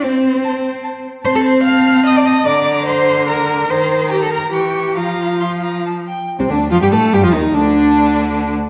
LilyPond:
<<
  \new Staff \with { instrumentName = "Violin" } { \time 3/4 \key a \minor \tempo 4 = 146 r4 a''4 a''4 | \key f \mixolydian a''4 a''4 a''4 | bes''2 bes''4 | bes''4 bes''4 cis'''4 |
bes''4 c'''8 bes''8 a''8 g''8 | r16 c'16 d'8 f'16 g'16 a'8 g'16 f'16 ees'8 | d'2~ d'8 r8 | }
  \new Staff \with { instrumentName = "Violin" } { \time 3/4 \key a \minor c''2~ c''8 r8 | \key f \mixolydian c'''16 a''16 c'''8 f'''4 ees'''16 d'''16 ees'''8 | d'''4 c'''4 bes''4 | c'''4 g''16 a''16 bes''8 g''4 |
f''2 r4 | r16 c'16 d'8 f'16 g'16 a'8 g'16 f'16 ees'8 | d'2~ d'8 r8 | }
  \new Staff \with { instrumentName = "Cello" } { \time 3/4 \key a \minor c'2~ c'8 r8 | \key f \mixolydian c''16 a'16 c''8 f''4 ees''16 d''16 ees''8 | d''4 c''4 bes'4 | c''4 g'16 a'16 bes'8 g'4 |
f'2 r4 | r16 c,16 d,8 f,16 g,16 a,8 g,16 f,16 ees,8 | d,2~ d,8 r8 | }
  \new Staff \with { instrumentName = "Viola" } { \clef bass \time 3/4 \key a \minor c'4 r2 | \key f \mixolydian c'2. | d2. | ees2 e4 |
f2~ f8 r8 | r16 c16 d8 f16 g16 a8 g16 f16 ees8 | d2~ d8 r8 | }
>>